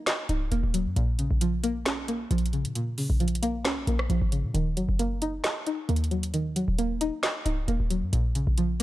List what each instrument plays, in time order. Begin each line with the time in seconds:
Already playing: synth pluck D#3 F#3 A#3 D#4
0.07 synth pluck D#5, snare, clap, closed hi-hat
0.29 808-style bass C#1, synth pluck D#4, closed hi-hat
0.52 808-style bass D#1, synth pluck A#3, closed hi-hat
0.63 808-style bass D#1
0.74 synth pluck F#3, closed hi-hat
0.86 808-style bass F#2
0.96 808-style bass A#1, synth pluck A#2, closed hi-hat
1.19 synth pluck C#3, closed hi-hat
1.31 808-style bass A#1
1.41 synth pluck F3, closed hi-hat
1.63 synth pluck A#3, closed hi-hat
1.86 synth pluck C#4, snare, clap, closed hi-hat
2.08 synth pluck A#3, closed hi-hat
2.31 808-style bass A#1, synth pluck F3, closed hi-hat
2.38 closed hi-hat
2.46 closed hi-hat
2.53 synth pluck C#3, closed hi-hat
2.65 808-style bass A#2, closed hi-hat
2.75 synth pluck A#2, closed hi-hat
2.98 synth pluck C#3, open hi-hat
3.10 808-style bass A#1
3.20 synth pluck F3, closed hi-hat
3.28 closed hi-hat
3.35 closed hi-hat
3.43 synth pluck A#3, closed hi-hat
3.65 808-style bass C#2, synth pluck C#4, cross-stick, snare, clap, closed hi-hat
3.77 808-style bass A#1
3.87 808-style bass A#1, synth pluck A#3, closed hi-hat
3.99 cross-stick
4.10 808-style bass A#1, synth pluck F3, closed hi-hat
4.22 808-style bass G#1
4.32 synth pluck C#3, closed hi-hat
4.44 808-style bass A#2
4.54 808-style bass D#1, synth pluck D#3, closed hi-hat
4.77 808-style bass F#1, synth pluck F#3, closed hi-hat
4.89 808-style bass F#1
4.99 synth pluck A#3, closed hi-hat
5.22 synth pluck D#4, closed hi-hat
5.44 synth pluck D#5, snare, clap, closed hi-hat
5.67 synth pluck D#4, closed hi-hat
5.89 808-style bass D#2, synth pluck A#3, closed hi-hat
5.96 closed hi-hat
6.04 closed hi-hat
6.11 synth pluck F#3, closed hi-hat
6.23 closed hi-hat
6.34 synth pluck D#3, closed hi-hat
6.56 synth pluck F#3, closed hi-hat
6.68 808-style bass D#1
6.79 synth pluck A#3, closed hi-hat
7.01 synth pluck D#4, closed hi-hat
7.23 synth pluck D#5, snare, clap, closed hi-hat
7.45 808-style bass C#1, synth pluck D#4, closed hi-hat
7.68 808-style bass D#1, synth pluck A#3, closed hi-hat
7.80 808-style bass D#1
7.90 synth pluck F#3, closed hi-hat
8.02 808-style bass F#2
8.13 808-style bass A#1, synth pluck A#2, closed hi-hat
8.35 synth pluck C#3, closed hi-hat
8.47 808-style bass A#1
8.58 synth pluck F3, closed hi-hat